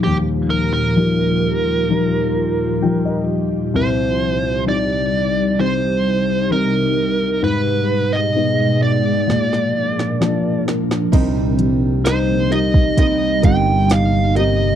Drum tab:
CC |----------------|----------------|----------------|x---------------|
HH |----------------|----------------|----------------|x-x-x-x-x-x-x-x-|
SD |----------------|----------------|--------oo-oo-oo|----o-------o---|
BD |----------------|----------------|----------------|o------oo-o-----|